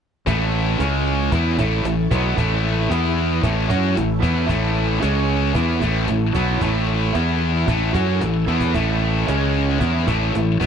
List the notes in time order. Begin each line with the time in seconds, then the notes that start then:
0.27 A1 A2 E3 A3 E4 A4 C#5, cajon bass
0.78 C#2 C#3 G#3 C#4 G#4 C#5, cajon slap
1.06 cajon slap
1.32 E2 E3 B3 E4 A4 C#5, cajon bass
1.58 A1 A2 E3 A3, cajon bass
1.84 A1 A2 E3, cajon slap
2.11 B1 B2 F#3 B3, cajon bass
2.37 A1 A2 E3 A3, cajon bass
2.90 E2 E3 B3 E4 E5, cajon slap
2.94 E4 B4
3.17 cajon slap
3.42 A1 A2 E3 A3 E4 A4 C#5, cajon bass
3.70 F#2 F#3 C#4 F#4, cajon bass
3.97 A1 A2 E3, cajon slap
4.22 E2 E3 B3 E4, cajon bass
4.48 A1 A2 E3 A3, cajon bass
5.00 C#2 C#3 G#3 C#4 G#4 C#5, cajon slap
5.55 E2 E3 B3 E4 A4 C#5, cajon bass
5.81 A1 A2 E3 A3, cajon bass
6.08 A1 A2 E3, cajon slap
6.35 B1 B2 F#3 B3, cajon bass
6.61 A1 A2 E3 A3, cajon bass
6.88 cajon slap
7.15 E2 E3 B3 E4 B4 E5, cajon slap
7.68 A1 A2 E3 A3 E4 A4 C#5, cajon bass
7.95 F#2 F#3 C#4 F#4, cajon bass, cajon slap
8.21 A1 A2 E3, cajon slap
8.47 E2 E3 B3 E4, cajon slap
8.61 cajon bass
8.74 A1 A2 E3 A3, cajon bass
9.01 cajon slap
9.26 C#2 C#3 G#3 C#4 G#4 C#5, cajon slap
9.54 cajon slap
9.79 E2 E3 B3 E4 A4 C#5, cajon bass
10.07 A1 A2 E3 A3, cajon bass
10.33 A1 A2 E3, cajon slap
10.60 B1 B2 F#3 B3, cajon bass